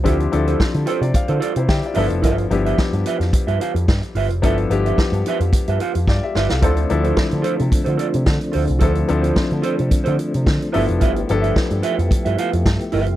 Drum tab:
HH |xxxx-xxxxxxx-xox|xxxx-xxxxxxx-xox|xxxx-xxxxxxx----|xxxx-xxxxxxx-xox|
SD |----o-------o---|----o--o----o---|----o-------o-oo|----o-------o---|
BD |o---o---o---o---|o---o---o---o---|o---o---o---o---|o---o---o---o---|

HH |xxxx-xxxxxxx-xox|xxxx-xxxxxxx-xox|
SD |----o-------o---|----o-------o---|
BD |o---o---o---o---|o---o---o---o---|